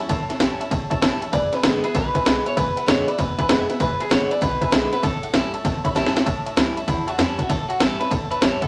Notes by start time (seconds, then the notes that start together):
0.00 C#4
0.09 A1 A2 C#5 E5 A5, kick, ride
0.29 C#5 E5 A5, muted upright bass stroke, snare, ride
0.40 A1 E3 G3 C#4 E4 C#5 E5 A5, snare, ride
0.60 C#4 E4 C#5 E5 A5, muted upright bass stroke, ride
0.70 A1 E2 C#5 E5 A5, kick, ride
0.90 C#5 E5 A5, muted upright bass stroke, kick, ride
1.01 A1 E3 G3 C#4 E4 C#5 E5 A5, snare, ride
1.21 C#4 E4 C#5 E5 A5, muted upright bass stroke, ride
1.32 E1 E2 B4 D5 E5 G#5, kick, ride
1.53 B4 E5 G#5, muted upright bass stroke, snare, ride
1.63 G#1 D3 G#3 B3 E4 B4 E5 G#5, snare, ride
1.83 B3 E4 G#4 B4 E5 B5, ride
1.95 B1 B2 B4 E5 G#5, kick, snare, ride
2.14 B4 E5 G#5, kick, ride
2.25 B1 D3 G#3 B3 E4 B4 E5 G#5, snare, ride
2.45 B3 E4 B4 C#5 E5 G#5, ride
2.56 E1 E2 B4 E5 G#5, kick, snare, ride
2.76 B4 E5 F#5, muted upright bass stroke, ride
2.86 E1 D3 G#3 B3 E4 B4 C#5 E5 G#5, snare, ride
3.07 B3 E4 B4 D5 E5 B5, ride
3.18 E1 B2 B4 E5 G#5, kick, snare, ride
3.38 B4 E5 G#5, kick, ride
3.49 E1 D3 G#3 B3 E4 B4 E5 G#5, snare, ride
3.60 E5
3.68 B3 E4 B4 E5 G#5, snare, ride
3.80 E1 B4 E5 G#5, kick, ride
4.00 G#4 B4 E5 G#5, muted upright bass stroke, ride
4.09 G#1 D3 G#3 B3 E4 B4 C#5 E5 F#5, snare, ride
4.30 B3 E4 B4 D5 E5 G#5, muted upright bass stroke, ride
4.41 B1 B2 B4 E5 G#5, kick, snare, ride
4.61 B4 E5 G#5, muted upright bass stroke, kick, ride
4.71 B1 D3 G#3 B3 E4 B4 E5 G#5, snare, ride
4.91 B3 E4 B4 E5 F#5, muted upright bass stroke, snare, ride
5.02 A1 A2 A4 C#5 E5 A5, kick, snare, ride
5.22 C#5 E5 F#5, muted upright bass stroke, ride
5.33 A1 E3 G3 C#4 E4 C#5 E5 A5, snare, ride
5.53 C#4 E4 C#5 E5 A5, muted upright bass stroke, ride
5.65 A1 E2 C#5 E5 A5, kick, snare, ride
5.84 C#5 E5 B5, muted upright bass stroke, kick, ride
5.95 A1 E3 G3 C#4 E4 C#5 E5 A5, snare, ride
6.06 snare
6.15 C#4 E4 C#5 E5 A5, muted upright bass stroke, snare, ride
6.25 A1 A2 C#5 E5 A5, kick, ride
6.46 C#5 E5 A5, muted upright bass stroke, ride
6.56 C#2 E3 G3 C#4 E4 E5 A5, snare, ride
6.76 C#4 E4 C#5 E5 A5, muted upright bass stroke, ride
6.87 E2 E4 C#5 E5 A5, kick, ride
7.07 F#4 C#5 E5 A5, muted upright bass stroke, ride
7.18 E2 E3 G3 C#4 E4 C#5 E5 A5, snare, ride
7.38 C#4 E4 F#4 C#5 E5 A5, muted upright bass stroke, kick, ride
7.49 A1 A2 A4 C#5 E5 A5, kick, ride
7.68 F#4 C#5 E5 A5, muted upright bass stroke, ride
7.79 A1 E3 G3 C#4 E4 A4 C#5 E5 A5, snare, ride
7.99 C#4 E4 B4 C#5 E5 A5, muted upright bass stroke, snare, ride
8.10 A1 E2 A4 C#5 E5 A5, kick, ride
8.30 B4 C#5 E5 A5, muted upright bass stroke, ride
8.41 A1 E3 G3 C#4 E4 C#5 E5 A5, snare, ride
8.61 C#4 E4 A4 C#5 E5 F#5, kick, ride